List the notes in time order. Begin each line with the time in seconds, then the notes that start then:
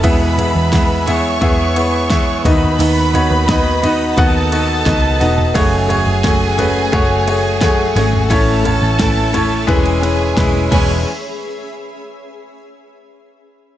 Already playing: E6
0.03 E2 B2 E3 G#3 B3 E4 G#4 B4 E5 G#5 B5, kick, ride
0.38 B3 E4 G#4 E5, floor tom, ride
0.56 E2
0.72 E3 G#3 B3 E4 G#4 E5, kick, snare, ride
1.06 E3 G#3 B3 E4 G#4 C#5 E5 C#6, floor tom, ride
1.41 E2 E3 G#3 B3 E4 G#4 E5, kick, ride
1.76 B3 E4 G#4 B4, ride
2.10 E3 G#3 B3 E4 G#4 E5, kick, snare, ride
2.44 D#2 D#3 B3 D#4 F#4 B4 D#5 F#5 B5 D#6, kick, snare, ride
2.63 floor tom
2.79 D#2 D#3 B3 D#4 F#4, ride
3.14 B3 D#4 F#4 C#5, floor tom, ride
3.31 D#2
3.47 D#3 B3 D#4 F#4 D#5, kick, snare, ride
3.82 B3 D#4 F#4 D#5, floor tom, ride
4.17 D#2 D#3 B3 D#4 F#4 A4 F#5 A5, kick, ride
4.52 B3 D#4 F#4 D#5, ride
4.86 C#2 D#3 B3 D#4 F#4 D#5, kick, snare, ride
5.20 E1 B3 D#4 F#4 D#5, snare, ride
5.38 floor tom
5.54 F#1 F#2 C#3 F#3 A3 C#4 F#4 G#4 C#5 G#5 C#6, kick, ride
5.88 A3 F#4 G#4 C#5, floor tom, ride
6.07 F#1
6.23 F#3 A3 C#4 F#4 G#4 C#5, kick, snare, ride
6.58 F#3 A3 C#4 F#4 G#4 B4, floor tom, ride
6.92 F#1 F#3 A3 C#4 F#4 G#4 C#5, kick, ride
7.27 A3 F#4 G#4 C#5, ride
7.61 F#3 A3 C#4 F#4 G#4 C#5, kick, snare, ride
7.95 G#1 F#3 A3 C#4 F#4 G#4 C#5, snare, ride
8.13 floor tom
8.30 A1 A2 E3 A3 C#4 E4 A4 C#5 E5 A5, kick, ride
8.64 A3 C#4 E4 C#5, floor tom, ride
8.82 A1
8.99 E3 A3 C#4 E4 A4, kick, snare, ride
9.33 A3 C#4 E4 C#5, floor tom, ride
9.67 E1 E3 G#3 C#4 E4 G#4 B4 G#5 B5, kick, ride
9.71 E4
9.86 ride
10.02 G#3 C#4 E4 B4, ride
10.36 E1 E3 G#3 C#4 E4 B4, kick, snare, ride
10.71 E1 E2 B2 E3 G#3 C#4 E4 B4 C#5 G#5, kick, crash